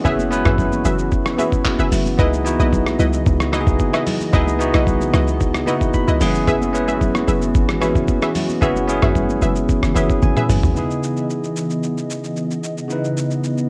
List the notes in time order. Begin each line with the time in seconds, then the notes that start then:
Already playing: E3 G#3 B3 C#4 E4 F#4 G#4
0.04 F#1 B3 C#4 E4 G#4 B4 E5, kick, shaker
0.19 high conga, shaker
0.30 B3 C#4 E4 B4, shaker
0.45 G#1 G#4 B4 E5, cross-stick, mid tom, high conga, shaker
0.58 kick, low conga, shaker
0.72 high conga, shaker
0.85 F#1 G#4 B4 E5, low conga, shaker
0.99 shaker
1.12 kick, shaker
1.26 cross-stick, shaker
1.37 B3 C#4 E4 F#4 G#4 B4 E5, high conga, shaker
1.52 kick, shaker
1.65 kick, clap, high conga, shaker
1.79 F#1 G#4 B4 E5, shaker
1.92 F#1, open hi-hat, high conga, low conga, shaker
2.06 high conga, shaker
2.18 C#2 C#3 B3 D#4 E4 G#4 B4 D#5, kick, shaker
2.33 high conga, shaker
2.45 B3 D#4 E4 F#4, shaker
2.59 B1 E4 B4 D#5, high conga, shaker
2.73 kick, low conga, shaker
2.86 cross-stick, high conga, shaker
2.99 C#2 E4 B4 D#5, low conga, shaker
3.13 shaker
3.26 C#2, kick, shaker
3.40 cross-stick, shaker
3.52 B3 D#4 E4 F#4 B4 D#5, cross-stick, high conga, shaker
3.61 G#4
3.67 B1, kick, shaker
3.79 kick, high conga, shaker
3.93 E4 B4 D#5, cross-stick, shaker
4.07 open hi-hat, high conga, low conga, shaker
4.21 high conga, shaker
4.32 C#2 B3 D#4 E4 G#4 B4 D#5, kick, shaker
4.47 high conga, shaker
4.59 B3 D#4 E4 F#4, shaker
4.74 B1 E4 B4 D#5, cross-stick, high conga, shaker
4.87 kick, low conga, shaker
5.00 high conga, shaker
5.13 C#2 E4 B4 D#5, cross-stick, low conga, shaker
5.27 shaker
5.40 kick, shaker
5.54 cross-stick, shaker
5.66 B3 D#4 E4 F#4 B4 D#5, high conga, shaker
5.81 kick, shaker
5.93 B5, kick, high conga, shaker
6.08 C#2 E4 B4 D#5, shaker
6.20 F#1 E3 G#3 A#3 C#4 E4 F#4 G#4 F#5, open hi-hat, high conga, low conga, shaker
6.26 B3
6.35 high conga, shaker
6.47 F#1 G#4 B4 E5, kick, shaker
6.62 high conga, shaker
6.73 B3 C#4 E4 B4, shaker
6.88 G#1 G#4 B4 E5, high conga, shaker
7.01 kick, low conga, shaker
7.15 cross-stick, high conga, shaker
7.28 F#1 G#4 B4 E5, low conga, shaker
7.42 shaker
7.55 G#1, kick, shaker
7.69 cross-stick, shaker
7.80 B3 C#4 E4 F#4 G#4 B4 E5, cross-stick, high conga, shaker
7.95 F#1, kick, shaker
8.08 kick, high conga, shaker
8.22 G#4 B4 E5, cross-stick, shaker
8.35 open hi-hat, high conga, low conga, shaker
8.49 high conga, shaker
8.61 F#1 B3 C#4 E4 F#4 G#4 B4 E5, kick, shaker
8.76 high conga, shaker
8.88 B3 C#4 E4 G#4, shaker
9.02 G#1 G#4 B4 E5, cross-stick, mid tom, high conga, shaker
9.15 kick, low conga, shaker
9.29 high conga, shaker
9.42 F#1 G#4 B4 E5, low conga, shaker
9.56 shaker
9.69 kick, shaker
9.83 F#1, cross-stick, shaker
9.95 F#1 B3 C#4 E4 G#4 B4 C#5 E5, high conga, shaker
10.10 kick, shaker
10.22 G#1 G#5, kick, high tom, high conga, shaker
10.36 G#4 B4 E5, mid tom, shaker
10.49 F#1, mid tom, open hi-hat, high conga, low conga, shaker
10.63 G#1, floor tom, high conga, shaker
10.74 C#3 E3 B3 D#4 E4 D#5, shaker
10.79 G#4
10.91 shaker
11.03 shaker
11.17 shaker
11.30 shaker
11.44 shaker
11.56 shaker
11.70 shaker
11.83 shaker
11.98 shaker
12.10 shaker
12.24 shaker
12.36 shaker
12.51 shaker
12.64 shaker
12.78 shaker
12.88 C#3 B3 D#4 E4, shaker
12.93 B4
13.05 shaker
13.18 shaker
13.31 shaker
13.44 shaker
13.58 shaker